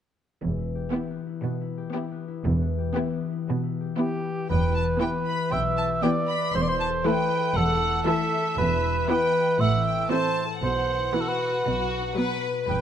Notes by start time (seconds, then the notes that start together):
0.41 E1 E2 E3
0.58 E4
0.75 G4
0.92 B3 E4 G4
1.10 B3
1.27 E4
1.43 B2 B3
1.61 E4
1.78 G4
1.94 B3 E4 G4
2.12 B3
2.28 E4
2.44 E1 E2 E3
2.62 B3
2.78 G4
2.95 B3 E4 G4
3.13 B3
3.30 E4
3.47 B2 B3
3.63 E4
3.81 G4
3.98 B3 E4 G4
4.16 B3
4.33 E4
4.50 E1 E2 E3 B4 G5
4.67 E4
4.76 A5
4.84 G4
5.01 E3 B3 E4 G4 B4 G5
5.18 E5
5.27 B5
5.35 B4
5.52 B1 B2 B3 E5 G5
5.69 E4
5.77 A5
5.87 G4
6.02 E3 B3 E4 G4 B4 D5 G5
6.21 E5
6.28 B5
6.38 B4
6.55 E1 E2 E3 C5 C6
6.62 D5
6.68 E4 C5
6.81 A5
6.89 A4
7.05 E3 A3 E4 A4 B4 G5
7.23 E5
7.40 A4
7.56 E1 E2 A3 A4 F#5
7.74 E4
7.90 A4
8.07 E3 A3 E4 A4 E5
8.41 A4
8.58 E1 E2 E3 B4
8.75 E4
8.92 G4
9.09 E3 B3 E4 G4 B4 G5
9.26 E5
9.59 A1 A2 E5 F#5
9.77 C4
9.86 G5
9.94 E4
10.11 E3 C4 E4 A4 C5 A5
10.29 C5
10.46 A4
10.62 B1 B2 C5 F#5
10.80 B3
10.98 E4
11.14 E3 B3 F#4 B4
11.21 A4
11.28 B4
11.49 F#4
11.65 B1 B2 F#4
11.83 B3
12.00 D#4
12.17 F#3 B3 F#4 B4
12.34 B4
12.51 F#4
12.68 E1 E2 E3 B4 G5